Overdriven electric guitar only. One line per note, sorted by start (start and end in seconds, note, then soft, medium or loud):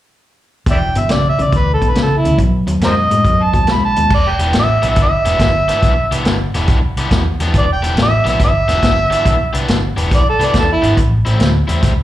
0.67 0.93 E2 medium
0.67 0.93 B2 loud
0.96 1.08 E2 medium
0.96 1.08 B2 medium
1.10 1.36 E2 medium
1.10 1.36 C#3 medium
1.39 1.51 E2 medium
1.39 1.51 C#3 medium
1.53 1.79 E2 medium
1.53 1.79 B2 medium
1.82 1.94 E2 medium
1.82 1.95 B2 medium
1.96 2.22 E2 medium
1.96 2.22 C#3 medium
2.24 2.37 E2 medium
2.24 2.38 C#3 medium
2.38 2.65 B2 medium
2.38 2.65 F#3 medium
2.67 2.80 B2 medium
2.67 2.80 F#3 medium
2.82 3.08 B2 medium
2.82 3.08 G#3 medium
3.11 3.23 B2 medium
3.11 3.24 G#3 medium
3.25 3.51 B2 medium
3.25 3.51 F#3 medium
3.53 3.66 B2 medium
3.53 3.67 F#3 medium
3.68 3.94 B2 medium
3.68 3.94 G#3 medium
3.97 4.10 B2 medium
3.97 4.10 G#3 medium
4.40 4.63 E3 medium
4.40 4.63 B3 medium
4.40 4.63 D4 medium
4.40 4.62 G4 medium
4.82 5.06 E3 medium
4.82 5.05 B3 medium
4.82 5.05 D4 medium
4.82 5.05 G4 medium
5.25 5.49 E3 medium
5.25 5.49 B3 medium
5.25 5.49 D4 medium
5.25 5.48 G4 medium
5.68 5.92 E3 medium
5.68 5.92 B3 medium
5.68 5.91 D4 medium
5.68 5.91 G4 medium
6.12 6.35 E3 medium
6.12 6.35 B3 medium
6.12 6.35 D4 medium
6.12 6.34 G4 medium
6.55 6.78 E3 medium
6.55 6.78 B3 medium
6.55 6.78 D4 medium
6.55 6.77 G4 medium
6.98 7.21 E3 medium
6.98 7.21 B3 medium
6.98 7.20 D4 medium
6.98 7.20 G4 loud
7.41 7.64 E3 medium
7.41 7.63 B3 medium
7.41 7.63 D4 medium
7.41 7.63 G4 medium
7.83 8.06 E3 medium
7.83 8.06 B3 medium
7.83 8.06 D4 medium
7.83 8.05 G4 medium
8.24 8.49 E3 medium
8.24 8.48 B3 medium
8.24 8.48 D4 medium
8.24 8.48 G4 medium
8.68 8.92 E3 medium
8.68 8.92 B3 loud
8.68 8.91 D4 medium
8.68 8.91 G4 loud
9.10 9.34 E3 medium
9.10 9.34 B3 medium
9.10 9.34 D4 medium
9.10 9.34 G4 medium
9.53 9.77 E3 medium
9.53 9.77 B3 medium
9.53 9.77 D4 medium
9.53 9.77 G4 medium
9.97 10.20 E3 medium
9.97 10.20 B3 medium
9.97 10.20 D4 medium
9.97 10.20 G4 medium
10.40 10.63 E3 medium
10.40 10.63 B3 medium
10.40 10.63 D4 loud
10.40 10.63 G4 medium
10.82 10.97 E3 medium
10.82 10.97 B3 medium
10.82 10.97 D4 medium
10.82 10.97 G4 medium
11.25 11.49 A2 medium
11.25 11.49 G3 medium
11.25 11.49 C4 medium
11.25 11.48 E4 medium
11.68 11.92 A2 medium
11.68 11.91 G3 medium
11.68 11.91 C4 medium
11.68 11.91 E4 medium